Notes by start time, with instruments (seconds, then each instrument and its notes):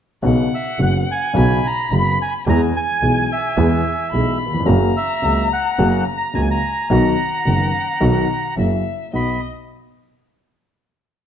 0.22 grand piano B1 B2 C#3 F#3 B3 F#4, double bass B1, violin F#5
0.55 bandoneon E5
0.79 grand piano F#1 F#2 C#3 F#3 B3 F#4, double bass F#1, bandoneon F#5
1.11 bandoneon G#5
1.33 grand piano B1 B2 C#3 F#3 B3 F#4, double bass B1, violin B5
1.67 bandoneon A#5
1.90 double bass F#1, grand piano F#1 F#2 C#3 F#3 B3 F#4, bandoneon B5
2.22 bandoneon G#5
2.47 double bass E2, grand piano E2 E3 G#3 B3 G#4, violin G#5, bandoneon A#5
2.77 bandoneon G#5
3.01 double bass B1, grand piano B1 B2 E3 G#3 B3 G#4
3.32 bandoneon E5
3.57 double bass E2, grand piano E2 E3 G#3 B3 G#4
4.12 double bass B1, grand piano B1 B2 E3 G#3 B3 G#4, violin B5
4.46 grand piano D#2
4.54 grand piano E2
4.60 grand piano F2
4.66 double bass F#1, grand piano F#2 C#3 F#3 A#3 F#4, violin A#5
4.97 bandoneon E5
5.22 grand piano C#2 C#3 F#3 A#3 F#4, double bass C#2
5.53 bandoneon F#5
5.78 double bass F#1, grand piano F#2 C#3 F#3 A#3 F#4
6.17 bandoneon A#5
6.33 grand piano C#2 C#3 F#3 A#3 F#4, double bass C#2, violin G#5, bandoneon A#5
6.42 bandoneon G#5
6.51 bandoneon A#5
6.90 grand piano B1 B2 D#3 F#3 B3 F#4, double bass B1, violin F#5
7.45 grand piano F#1 F#2 D#3 F#3 B3 F#4, double bass F#1
8.00 grand piano B1 B2 D#3 F#3 B3 F#4, double bass B1
8.57 double bass F#1, grand piano F#2 C#3 F#3 A#3 E4, violin E5
9.13 grand piano B1 B3 D#4 F#4, double bass B1, violin D#5, bandoneon B5